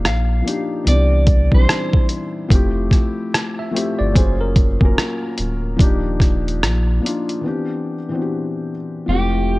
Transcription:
Already playing: F3 A#3 D4 D#4 G4
0.05 A#1 F5, cross-stick, closed hi-hat
0.42 F3 A#3 D4
0.47 D#4 G4, closed hi-hat
0.84 C2 E3 B3 C4 D5, closed hi-hat
0.89 D4 G4
1.27 kick, closed hi-hat
1.51 B1 E3 G3 C4 C5, kick
1.55 D4 D#4
1.63 E4
1.69 cross-stick, closed hi-hat
1.93 kick
2.09 closed hi-hat
2.49 F1 F3 A3 C4, kick, closed hi-hat
2.53 E4 G4
2.91 kick, cross-stick, closed hi-hat
3.34 cross-stick, closed hi-hat
3.59 E5
3.71 F3 A3 C4
3.76 E4 G4, closed hi-hat
3.99 G1 D5
4.12 F#3 A#3 C#4 C5
4.16 F#1 F4 G#4, kick, closed hi-hat
4.41 A#4
4.56 kick, closed hi-hat
4.79 F1 F#3 A#3 C#4, kick
4.84 F4 A#4
4.98 cross-stick, closed hi-hat
5.38 D1, closed hi-hat
5.77 D#1 F3 A#3 D4, kick, closed hi-hat
5.81 D#4 G4
6.20 kick, cross-stick, closed hi-hat
6.48 closed hi-hat
6.62 A#1, cross-stick, closed hi-hat
7.01 F3 A#3 D4
7.05 D#4 F4, closed hi-hat
7.29 closed hi-hat
7.41 E3 B3 C4
7.46 D4 G4
8.09 E3 B3 C4
8.13 D4 F#4
8.22 G4
9.06 F1 F3 G#3 C4 G4
9.11 A3 E4 G4

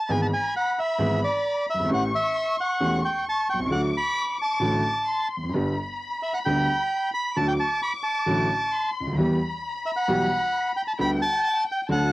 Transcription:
Already playing: A5
0.08 G#1 G#2 E3 G#3 B3 G#4 G#5 B5
0.22 A5
0.34 G#5
0.56 F#5
0.79 E5
0.99 G#1 G#2 E3 G#3 B3 G#4
1.24 D5
1.70 E5
1.74 F#1
1.80 G1
1.85 G#1
1.90 A1 A2 E3 A3 C#4 G4 C#6
1.94 F#5
2.15 E5
2.60 F#5
2.80 E1 E2 E3 A3 C#4 G4
3.05 G5
3.25 C#6
3.29 A5
3.50 B1 G5
3.59 C2
3.66 C#2 D6
3.70 D2 D3 F#3 A3 F#4 F#5
3.97 B5
4.42 A5
4.59 A1 A2 D3 F#3 A3 F#4
5.06 C6
5.37 E2
5.43 F2
5.49 F#2 B5
5.54 G1 G2 D3 G3 B3 G4
6.23 E5
6.34 F#5
6.45 D2 D3 G3 B3 G4 G5
7.14 B5
7.35 D2 D3 F#3 A3 F#4 A5 D6
7.48 G5
7.60 A5
7.83 B5
8.03 A5
8.26 A1 A2 D3 F#3 A3 F#4
8.72 C6
9.01 C#2
9.07 D2
9.13 D#2 B5
9.18 E2 E3 G3 B3 G4
9.86 E5
9.96 F#5
10.08 B1 B2 E3 G3 B3 G4
10.77 G5
10.88 A5
10.97 D2 D3 G3 B3 G4 G5 B5
11.22 A5
11.72 G5
11.89 D2 D3 F#3 A3 F#4 F#5 A5

